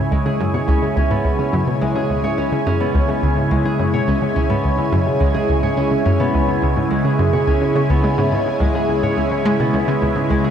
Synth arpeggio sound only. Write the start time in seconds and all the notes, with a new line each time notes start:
0.11 C#2
0.26 C#3
0.40 F#2
0.54 B2
0.68 C#2
0.82 C#3
0.96 C#2
1.11 G#2
1.25 C#2
1.39 C#3
1.53 F#2
1.67 B2
1.81 C#2
1.95 C#3
2.09 C#2
2.24 G#2
2.38 C#2
2.52 C#3
2.66 F#2
2.80 B2
2.95 C#2
3.08 C#3
3.22 C#2
3.37 G#2
3.51 C#2
3.65 C#3
3.79 F#2
3.94 B2
4.08 C#2
4.22 C#3
4.36 C#2
4.50 G#2
4.64 C#2
4.79 C#3
4.92 F#2
5.06 B2
5.21 C#2
5.35 C#3
5.49 C#2
5.63 G#2
5.77 C#2
5.91 C#3
6.06 F#2
6.20 B2
6.34 C#2
6.48 C#3
6.63 C#2
6.77 G#2
6.91 C#2
7.05 C#3
7.19 F#2
7.33 B2
7.47 C#2
7.61 C#3
7.75 C#3
7.90 C#2
8.04 G#3
8.18 G#2
8.32 G#2
8.46 C#3
8.60 C#2
8.75 C#3
8.89 C#2
9.03 G#2
9.17 C#2
9.32 C#3
9.46 G#3
9.60 B2
9.74 C#2
9.88 C#3
10.02 C#2
10.16 G#2
10.30 C#2
10.44 C#3